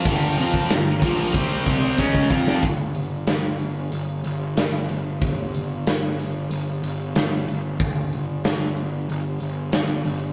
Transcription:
<<
  \new Staff \with { instrumentName = "Tonewheel organ" } { \time 4/4 \key g \minor \tempo 4 = 93 << { <bes' bes''>2 <c'' c'''>4 <bes' bes''>4 | r1 | r1 | r1 | } \\ { g'1 | r1 | r1 | r1 | } >> }
  \new Staff \with { instrumentName = "Distorted electric guitar" } { \clef bass \time 4/4 \key g \minor <g, d g>8 <f c' f'>8 <g, d>8 <bes, f bes>8 <c g c'>4 <cis aes cis'>8 <f c' f'>8 | r1 | r1 | r1 | }
  \new Staff \with { instrumentName = "Overdriven electric guitar" } { \clef bass \time 4/4 \key g \minor <g, d g>8 <f c' f'>8 <g, d>8 <bes, f bes>8 <c g c'>4 <cis aes cis'>8 <f c' f'>8 | r1 | r1 | r1 | }
  \new Staff \with { instrumentName = "Picked electric bass" } { \clef bass \time 4/4 \key g \minor g,,8 f,8 g,,8 bes,,8 c,4 cis,8 f,8 | g,,4 g,,4 g,,8 g,,8 g,,8 g,,8 | g,,4 g,,4 g,,8 g,,8 g,,8 g,,8 | g,,4 g,,4 g,,8 g,,8 g,,8 g,,8 | }
  \new DrumStaff \with { instrumentName = "Drums" } \drummode { \time 4/4 <hho bd>8 hho16 bd16 <hho sn>8 <hho bd>8 <hho bd>8 <hho bd>8 bd16 bd16 bd16 sn16 | <hho bd>8 hho8 <hho sn>8 hho8 hho8 hho8 <hho sn>8 hho8 | <hho bd>8 hho8 <hho sn>8 hho8 hho8 hho8 <hho sn>8 hho8 | <hho bd>8 hho8 <hho sn>8 hho8 hho8 hho8 <hho sn>8 hho8 | }
>>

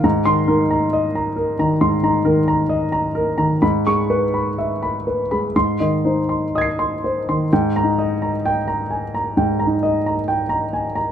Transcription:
<<
  \new Staff \with { instrumentName = "Grand piano" } { \time 4/4 \key ees \mixolydian \tempo 4 = 65 << { r16 c'''8 r2. r16 | r16 cis'''8 r4 r16 c'''8 r8 <ees''' aes''' c''''>4 | r16 bes''8 r2. r16 | } \\ { bes''8 bes'16 bes''16 ees''16 bes''16 bes'16 bes''16 c'''16 bes''16 bes'16 bes''16 ees''16 bes''16 bes'16 bes''16 | b''8 b'16 b''16 e''16 b''16 b'16 b''16 r16 ees''16 c''16 c'''16 ees''16 c'''16 c''16 c'''16 | g''8 ees''16 bes''16 g''16 bes''16 aes''16 bes''16 g''16 bes''16 ees''16 bes''16 g''16 bes''16 aes''16 bes''16 | } >> }
  \new Staff \with { instrumentName = "Grand piano" } { \clef bass \time 4/4 \key ees \mixolydian aes,16 ees16 ees'8 r8. ees16 aes,16 ees'16 ees8 r8. ees16 | gis,16 gis8 r4 gis16 aes,16 ees16 ees'8 r8. ees16 | \tuplet 3/2 { aes,8 ees'4 } r4 \tuplet 3/2 { aes,8 ees'4 } r4 | }
>>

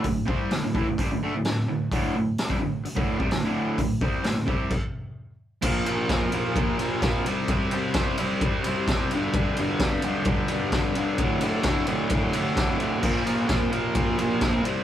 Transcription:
<<
  \new Staff \with { instrumentName = "Overdriven electric guitar" } { \clef bass \time 4/4 \key d \minor \tempo 4 = 130 <d, a,>8 <c g c'>8 <d, a,>16 <d, a,>16 <a, e>16 <d, a,>16 <c g>16 <d, a,>16 <d a>16 <d, a,>16 <d, a,>8 <d, a,>8 | <d, a, d>8 <d, a,>8 r16 <c g>16 <d, a,>8 r16 <d, a, d>8 <c g>16 <d, a,>16 <d, a, d>8. | <d, a,>8 <c g c'>8 <d, a,>16 <d, a,>16 <c g c'>8 r2 | <bes, f bes>8 <bes, f bes>8 <bes, f bes>8 <bes, f bes>8 <bes, f bes>8 <bes, f bes>8 <bes, f bes>8 <c g c'>8 |
<c g c'>8 <c g c'>8 <c g c'>8 <c g c'>8 <c g c'>8 <c g c'>8 <c g c'>8 <g, d g>8 | <g, d g>8 <g, d g>8 <g, d g>8 <g, d g>8 <g, d g>8 <g, d g>8 <g, d g>8 <g, d g>8 | <d, a, d>8 <d, a, d>8 <d, a, d>8 <d, a, d>8 <d, a, d>8 <d, a, d>8 <d, a, d>8 <d, a, d>8 | <bes, f bes>8 <bes, f bes>8 <bes, f bes>8 <bes, f bes>8 <bes, f bes>8 <bes, f bes>8 <bes, f bes>8 <c g c'>8 | }
  \new DrumStaff \with { instrumentName = "Drums" } \drummode { \time 4/4 <hho bd>8 bd8 <hho sn>8 bd8 <hho bd>4 <hho sn>4 | <hho bd>4 <hho sn>16 bd8. hho16 bd8 bd16 <hho sn>4 | <hho bd>8 bd8 <hho sn>8 bd8 <cymc bd>4 r4 | <cymc bd>8 cymr8 <bd cymr sn>8 cymr8 <bd cymr>8 cymr8 <bd cymr sn>8 cymr8 |
<bd cymr>8 cymr8 <bd cymr sn>8 cymr8 <bd cymr>8 cymr8 <bd cymr sn>8 cymr8 | <bd cymr>8 cymr8 <bd cymr sn>8 cymr8 <bd cymr>8 cymr8 <bd cymr sn>8 cymr8 | <bd cymr>8 cymr8 <bd cymr sn>8 cymr8 <bd cymr>8 cymr8 <bd cymr sn>8 cymr8 | <cymc bd>8 cymr8 <bd cymr sn>8 cymr8 <bd cymr>8 cymr8 <bd cymr sn>8 cymr8 | }
>>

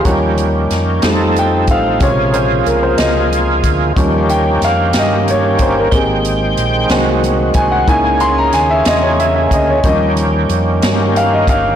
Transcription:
<<
  \new Staff \with { instrumentName = "Upright piano" } { \time 6/8 \key ees \mixolydian \tempo 4. = 61 g'4 r4 g''8 f''8 | des''8 c''8 bes'16 c''16 ees''4 r8 | r8 g''8 f''8 ees''8 des''8 c''16 bes'16 | aes'4 r4. aes''16 ges''16 |
aes''16 aes''16 c'''16 bes''16 aes''16 fes''16 ees''16 des''16 fes''16 fes''16 ees''16 des''16 | ees''4 r4 f''16 ees''16 f''8 | }
  \new Staff \with { instrumentName = "Upright piano" } { \clef bass \time 6/8 \key ees \mixolydian <f g des'>8 r4 <ees g a>8 r4 | <c des aes>8 r2 r8 | <f g des'>2. | <bes c' g'>8 r4 <ges bes c'>8 r4 |
<bes ees' fes'>4. r4. | <f g des'>4. r4. | }
  \new Staff \with { instrumentName = "Tonewheel organ" } { \time 6/8 \key ees \mixolydian <ees bes des' ges' g'>4. <f c' ees' g' a'>4. | <f bes f' aes'>2. | <ees bes des' g'>2. | <ees aes c' g''>4. <ees aes c' ges'>4. |
<des bes des' aes'>2. | <ees bes des' g'>2. | }
  \new Staff \with { instrumentName = "Fingered electric bass" } { \clef bass \time 6/8 \key ees \mixolydian ees,4 f,8 f,4 a,,8 | bes,,4 c,8 des,4 d,8 | ees,4 f,8 g,4 g,,8 | aes,,4 bes,,8 c,4 c,8 |
des,4 ees,8 fes,4 d,8 | ees,4 f,8 g,4 g,,8 | }
  \new DrumStaff \with { instrumentName = "Drums" } \drummode { \time 6/8 <hh bd>8 hh8 <hh sn>8 <hh sn>8 hh8 <hh bd>8 | <hh bd>8 hh8 hh8 <hh sn>8 hh8 <hh bd>8 | <hh bd>8 hh8 <hh sn>8 <hh sn>8 hh8 <hh bd>8 | <hh bd>8 hh8 hh8 <hh sn>8 hh8 <hh bd>8 |
<hh bd>8 hh8 <hh sn>8 <hh sn>8 hh8 <hh bd>8 | <hh bd>8 hh8 hh8 <hh sn>8 hh8 <hh bd>8 | }
>>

